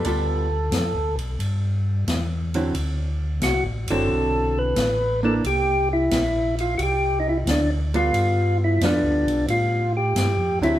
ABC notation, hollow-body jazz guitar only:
X:1
M:4/4
L:1/8
Q:"Swing" 1/4=89
K:Gmix
V:1 name="Hollow-body jazz guitar"
[G,B,FA] z6 [D,^F,CE] | z3 [D,^F,CE]3 z [_B,DE] | z6 z [G,B,FA]- | [G,B,FA]2 [G,B,FA]3 z2 [D,^F,CE] |]